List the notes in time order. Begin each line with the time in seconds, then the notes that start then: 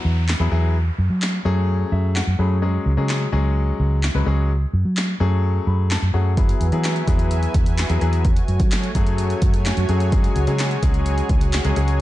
Already playing: F#3 B3 E4 F#4, downlifter
0.05 E2
0.28 snare, clap
0.40 E2 F#3 B3 E4 G#4
0.51 E2 F#3 B3 E4 G#4
0.98 F#2
1.10 F#3
1.22 snare, clap
1.45 F#2 F#3 A3 C#4 G#4
1.92 F#2 E5
2.16 F#5, snare, clap
2.27 F#2
2.39 F#2 F#3 A3 C#4 G#4 B5
2.62 F#3 G#3 C#4 G#4
2.86 C#2
2.97 C#3 F#3 G#3 C#4 G#4
3.09 snare, clap
3.32 C#2 F#3 G#3 C#4 G#4
3.79 C#2
4.03 snare, clap
4.14 C#2 F#3 G#3 C#4 B4
4.26 C#2 F#3 G#3 C#4 G#4
4.73 F#2
4.85 F#3
4.97 snare, clap
5.20 F#2 F#3 A3 C#4 G#4
5.67 F#2 B5
5.90 A5, snare, clap
6.02 F#2
6.14 F#2 F#3 A3 C#4 G#4 F#5
6.37 F#3 B3 E4 F#4 G#4 B4 E5 G#5, kick, closed hi-hat
6.49 closed hi-hat
6.61 E2, closed hi-hat
6.72 E3 F#3 B3 E4 G#4, closed hi-hat
6.84 snare, clap, closed hi-hat
6.96 closed hi-hat
7.07 E2 F#3 B3 E4 G#4, kick, closed hi-hat
7.19 closed hi-hat
7.31 closed hi-hat
7.43 closed hi-hat
7.54 E2, kick, closed hi-hat
7.66 closed hi-hat
7.78 snare, clap, closed hi-hat
7.90 E2 F#3 B3 E4 G#4, closed hi-hat
8.01 E2 F#3 B3 E4 G#4, closed hi-hat
8.13 closed hi-hat
8.25 A3 C#5 G#5, kick, closed hi-hat
8.37 closed hi-hat
8.48 F#2, closed hi-hat
8.60 F#3, kick, closed hi-hat
8.71 snare, clap, closed hi-hat
8.83 closed hi-hat
8.95 F#2 F#3 A3 C#4 G#4, kick, closed hi-hat
9.07 closed hi-hat
9.18 closed hi-hat
9.30 closed hi-hat
9.42 F#2, kick, closed hi-hat
9.54 closed hi-hat
9.65 snare, clap, closed hi-hat
9.77 F#2, closed hi-hat
9.89 F#2 F#3 A3 C#4 G#4, closed hi-hat
10.00 closed hi-hat
10.12 F#3 G#3 C#4 G#4, kick, closed hi-hat
10.24 closed hi-hat
10.36 C#2, closed hi-hat
10.47 C#3 F#3 G#3 C#4 G#4, closed hi-hat
10.59 snare, clap, closed hi-hat
10.71 closed hi-hat
10.82 C#2 F#3 G#3 C#4 G#4, kick, closed hi-hat
10.94 closed hi-hat
11.06 closed hi-hat
11.18 closed hi-hat
11.29 C#2, kick, closed hi-hat
11.41 closed hi-hat
11.53 snare, clap, closed hi-hat
11.64 C#2 F#3 G#3 C#4 G#4, closed hi-hat
11.76 C#2 F#3 G#3 C#4 G#4, closed hi-hat
11.88 closed hi-hat